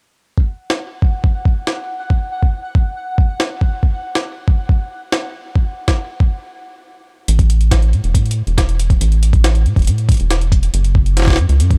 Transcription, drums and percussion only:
0.38 kick
0.70 snare
1.02 kick
1.24 kick
1.45 kick
1.67 snare
2.10 kick
2.43 kick
2.75 kick
3.18 kick
3.40 snare
3.61 kick
3.83 kick
4.15 snare
4.48 kick
4.69 kick
5.12 snare
5.56 kick
5.88 kick, snare
6.20 kick
7.28 closed hi-hat
7.39 kick, closed hi-hat
7.50 closed hi-hat
7.61 closed hi-hat
7.71 kick, snare, closed hi-hat
7.82 closed hi-hat
7.93 closed hi-hat
8.04 closed hi-hat
8.15 kick, closed hi-hat
8.26 closed hi-hat
8.31 closed hi-hat
8.47 closed hi-hat
8.58 kick, snare, closed hi-hat
8.69 closed hi-hat
8.79 closed hi-hat
8.90 kick, closed hi-hat
9.01 closed hi-hat
9.12 closed hi-hat
9.23 closed hi-hat
9.33 kick, closed hi-hat
9.44 snare, closed hi-hat
9.55 closed hi-hat
9.66 closed hi-hat
9.76 kick, closed hi-hat
9.79 closed hi-hat
9.82 closed hi-hat
9.85 closed hi-hat
9.87 closed hi-hat
9.98 closed hi-hat
10.09 kick, closed hi-hat
10.12 closed hi-hat
10.14 closed hi-hat
10.17 closed hi-hat
10.20 closed hi-hat
10.31 snare, closed hi-hat
10.41 closed hi-hat
10.52 kick, closed hi-hat
10.63 closed hi-hat
10.74 closed hi-hat
10.84 closed hi-hat
10.95 kick
11.06 closed hi-hat
11.17 snare, closed hi-hat
11.20 snare
11.22 snare
11.25 kick, snare
11.28 snare, closed hi-hat
11.30 snare
11.33 snare
11.36 snare, closed hi-hat
11.49 closed hi-hat
11.60 closed hi-hat
11.71 kick, closed hi-hat

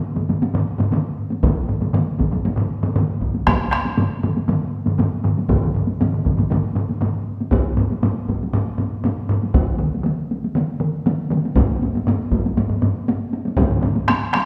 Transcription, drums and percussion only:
0.16 taiko low-mid, taiko mid, taiko high
0.29 taiko low-mid, taiko mid, taiko high
0.42 taiko high
0.54 taiko low-mid, taiko mid
0.79 taiko low-mid, taiko mid, taiko high
0.91 taiko low-mid, taiko mid, taiko high
1.30 taiko high
1.43 taiko, taiko low-mid, taiko mid, taiko high
1.68 taiko low-mid, taiko mid
1.81 taiko low-mid, taiko mid, taiko high
1.93 taiko low-mid, taiko mid, taiko high
2.19 taiko, taiko low-mid, taiko mid, taiko high
2.31 taiko low-mid, taiko mid, taiko high
2.46 taiko high
2.56 taiko low-mid, taiko mid
2.83 taiko low-mid, taiko mid, taiko high
2.96 taiko low-mid, taiko mid, taiko high
3.21 taiko
3.34 taiko high
3.47 taiko rim, taiko, taiko high
3.71 taiko rim
3.85 taiko high
3.97 taiko low-mid, taiko mid, taiko high
4.23 taiko low-mid, taiko mid, taiko high
4.37 taiko high
4.48 taiko low-mid, taiko mid, taiko high
4.86 taiko low-mid, taiko mid, taiko high
4.99 taiko low-mid, taiko mid, taiko high
5.24 taiko low-mid, taiko mid
5.38 taiko high
5.49 taiko, taiko low-mid, taiko mid, taiko high
5.62 taiko low-mid, taiko mid
5.75 taiko low-mid, taiko mid
5.87 taiko high
6.00 taiko low-mid, taiko mid, taiko high
6.12 taiko low-mid, taiko mid
6.25 taiko, taiko low-mid, taiko mid, taiko high
6.38 taiko low-mid, taiko mid, taiko high
6.50 taiko low-mid, taiko mid, taiko high
6.75 taiko low-mid, taiko mid
6.89 taiko high
7.01 taiko low-mid, taiko mid, taiko high
7.41 taiko high
7.51 taiko, taiko high
7.77 taiko low-mid, taiko high
7.90 taiko high
8.03 taiko low-mid, taiko high
8.28 taiko, taiko high
8.43 taiko high
8.53 taiko low-mid, taiko high
8.78 taiko low-mid, taiko high
9.04 taiko low-mid, taiko high
9.29 taiko low-mid, taiko high
9.43 taiko high
9.54 taiko, taiko high
9.79 taiko mid, taiko high
9.95 taiko high
10.03 taiko mid, taiko high
10.31 taiko high
10.44 taiko high
10.55 taiko mid, taiko high
10.80 taiko mid
11.06 taiko mid, taiko high
11.30 taiko mid, taiko high
11.45 taiko high
11.56 taiko, taiko low-mid, taiko high
11.83 taiko high
11.95 taiko high
12.07 taiko low-mid, taiko high
12.31 taiko, taiko high
12.46 taiko high
12.57 taiko low-mid, taiko high
12.70 taiko low-mid
12.82 taiko low-mid, taiko high
13.08 taiko high
13.33 taiko high
13.45 taiko high
13.57 taiko, taiko low-mid, taiko mid, taiko high
13.69 taiko low-mid, taiko mid
13.81 taiko low-mid, taiko mid, taiko high
13.96 taiko high
14.08 taiko rim, taiko high
14.33 taiko rim, taiko high

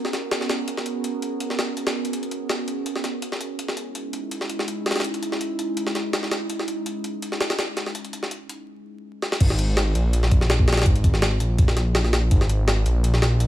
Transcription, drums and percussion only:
0.05 snare
0.13 snare, closed hi-hat
0.31 snare, closed hi-hat
0.41 snare
0.49 snare, closed hi-hat
0.68 closed hi-hat
0.78 snare
0.86 closed hi-hat
1.04 closed hi-hat
1.22 closed hi-hat
1.40 closed hi-hat
1.50 snare
1.59 snare, closed hi-hat
1.77 closed hi-hat
1.87 snare, closed hi-hat
2.05 closed hi-hat
2.13 closed hi-hat
2.23 closed hi-hat
2.31 closed hi-hat
2.50 snare, closed hi-hat
2.68 closed hi-hat
2.86 closed hi-hat
2.96 snare
3.04 snare, closed hi-hat
3.22 closed hi-hat
3.32 snare
3.41 closed hi-hat
3.59 closed hi-hat
3.68 snare
3.77 closed hi-hat
3.95 closed hi-hat
4.13 closed hi-hat
4.31 closed hi-hat
4.41 snare
4.50 closed hi-hat
4.59 snare
4.68 closed hi-hat
4.86 snare, closed hi-hat
4.91 snare, closed hi-hat
4.96 snare, closed hi-hat
5.00 snare, closed hi-hat
5.04 closed hi-hat
5.14 closed hi-hat
5.23 closed hi-hat
5.32 snare
5.41 closed hi-hat
5.59 closed hi-hat
5.77 closed hi-hat
5.87 snare
5.95 snare, closed hi-hat
6.13 snare, closed hi-hat
6.23 snare
6.32 snare, closed hi-hat
6.50 closed hi-hat
6.59 snare
6.68 closed hi-hat
6.86 closed hi-hat
7.04 closed hi-hat
7.22 closed hi-hat
7.32 snare
7.41 snare, closed hi-hat
7.50 snare, closed hi-hat
7.59 snare, closed hi-hat
7.77 snare, closed hi-hat
7.86 snare
7.95 closed hi-hat
8.05 closed hi-hat
8.13 closed hi-hat
8.23 snare
8.31 closed hi-hat
8.49 closed hi-hat
9.22 snare
9.32 snare
9.41 kick, closed hi-hat, crash
9.50 snare
9.59 closed hi-hat
9.77 snare, closed hi-hat
9.95 closed hi-hat
10.13 closed hi-hat
10.23 snare
10.31 kick, closed hi-hat
10.41 snare
10.50 snare, closed hi-hat
10.59 kick
10.68 snare, closed hi-hat
10.72 snare, closed hi-hat
10.77 snare, closed hi-hat
10.82 snare, closed hi-hat
10.86 kick, closed hi-hat
10.96 closed hi-hat
11.04 kick, closed hi-hat
11.14 snare
11.22 snare, closed hi-hat
11.40 closed hi-hat
11.59 kick, closed hi-hat
11.68 snare
11.77 snare, closed hi-hat
11.95 snare, closed hi-hat
12.05 snare
12.13 snare, closed hi-hat
12.31 kick, closed hi-hat
12.41 snare
12.49 closed hi-hat
12.68 snare, closed hi-hat
12.86 closed hi-hat
13.04 closed hi-hat
13.14 snare
13.22 snare, closed hi-hat
13.40 closed hi-hat

